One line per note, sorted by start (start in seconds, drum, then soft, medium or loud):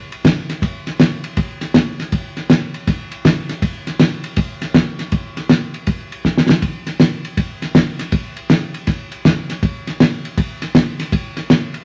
0.12 ride medium
0.25 kick medium
0.25 snare loud
0.25 ride medium
0.49 snare soft
0.49 ride medium
0.62 kick loud
0.62 ride medium
0.87 snare soft
0.87 ride medium
1.00 snare loud
1.00 ride medium
1.24 ride medium
1.37 kick loud
1.37 ride medium
1.61 snare soft
1.61 ride medium
1.74 kick medium
1.74 snare loud
1.74 ride medium
2.00 snare soft
2.00 ride medium
2.12 kick loud
2.12 ride medium
2.37 snare soft
2.37 ride medium
2.50 snare loud
2.50 ride medium
2.74 ride medium
2.87 kick loud
2.87 snare soft
2.87 ride medium
3.12 ride medium
3.25 kick medium
3.25 snare loud
3.25 ride medium
3.49 snare soft
3.49 ride medium
3.62 kick loud
3.62 ride medium
3.87 snare soft
3.87 ride medium
4.00 snare loud
4.00 ride medium
4.24 ride medium
4.36 kick loud
4.36 ride loud
4.62 snare soft
4.62 ride medium
4.74 kick medium
4.74 snare loud
4.74 ride medium
4.99 snare soft
4.99 ride medium
5.12 kick loud
5.12 ride medium
5.37 snare soft
5.37 ride medium
5.49 snare loud
5.49 ride medium
5.74 ride medium
5.87 kick loud
5.87 ride medium
6.12 ride medium
6.25 kick medium
6.25 snare medium
6.37 snare medium
6.49 snare loud
6.62 kick loud
6.62 ride medium
6.87 snare soft
6.87 ride medium
7.00 snare loud
7.00 ride medium
7.25 ride medium
7.37 kick loud
7.37 ride medium
7.62 snare soft
7.62 ride medium
7.75 kick medium
7.75 snare loud
7.75 ride medium
7.99 snare soft
7.99 ride medium
8.12 kick loud
8.12 ride medium
8.37 ride medium
8.50 snare loud
8.50 ride medium
8.74 ride medium
8.87 kick loud
8.87 snare soft
8.87 ride medium
9.12 ride medium
9.25 kick medium
9.25 snare loud
9.25 ride medium
9.50 snare soft
9.50 ride medium
9.63 kick loud
9.63 ride medium
9.87 snare soft
9.87 ride medium
10.00 snare loud
10.00 ride medium
10.25 ride medium
10.38 kick loud
10.38 ride medium
10.62 snare soft
10.62 ride medium
10.75 kick medium
10.75 snare loud
10.75 ride medium
10.99 snare soft
10.99 ride medium
11.12 kick loud
11.12 ride medium
11.37 snare soft
11.37 ride medium
11.50 snare loud
11.50 ride medium
11.74 ride medium